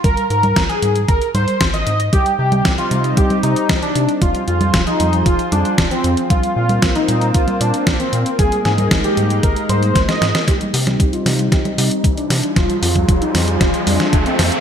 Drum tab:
HH |xxxxxxxxxxxxxxxx|xx-xxxxxxxxxxxxx|xxxxxxxxxxxxxxxx|xx-xxxxxxxxxxxxx|
SD |----o-------o---|----o-------o---|----o-------o---|----o-------o---|
CG |o--o--o---o-----|o--o--o--o------|o--o--o---o-----|o--o--o--o------|
BD |o---o---o---o---|o---o---o---o---|o---o---o---o---|o---o---o---o---|

HH |xxxxxxxxxxxxxxxx|xxoxxxoxxxoxxxox|xxoxxxoxxxoxxxox|
SD |--o-o-------oooo|o--o--o-o-----o-|o-----o-o--o--o-|
CG |o--o--o---o-----|o--o--o--o------|o--o--o---o-----|
BD |o---o---o---o---|o---o---o---o---|o--oo---o---o---|